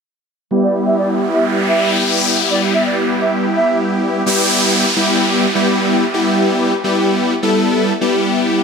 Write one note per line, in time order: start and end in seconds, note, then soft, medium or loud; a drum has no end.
0.51 4.22 G3 medium
0.51 4.22 B3 medium
0.51 4.22 E4 medium
0.51 4.23 G4 medium
0.51 noise sweep medium
0.63 0.73 D5 medium
0.87 0.97 E5 medium
0.98 1.09 D5 medium
1.34 1.44 E5 medium
1.69 1.89 E5 medium
2.51 2.61 D5 medium
2.74 2.84 E5 medium
2.86 2.96 D5 medium
3.21 3.31 E5 medium
3.56 3.77 E5 medium
4.26 4.85 G3 medium
4.26 4.85 B3 medium
4.26 4.85 E4 medium
4.26 4.85 G4 loud
4.26 downlifter medium
4.96 5.46 G3 medium
4.96 5.46 B3 medium
4.96 5.46 E4 medium
4.96 5.46 G4 medium
5.55 6.04 G3 medium
5.55 6.04 B3 medium
5.55 6.04 E4 medium
5.55 6.04 G4 loud
6.14 6.73 G3 medium
6.14 6.73 B3 medium
6.14 6.73 E4 medium
6.14 6.73 G4 loud
6.84 7.33 G3 medium
6.84 7.33 B3 medium
6.84 7.33 E4 medium
6.84 7.33 G4 medium
7.42 7.92 G3 medium
7.42 7.92 B3 medium
7.42 7.92 E4 medium
7.42 7.92 A4 loud
8.01 8.60 G3 medium
8.01 8.60 B3 medium
8.01 8.60 E4 medium
8.01 8.60 G4 loud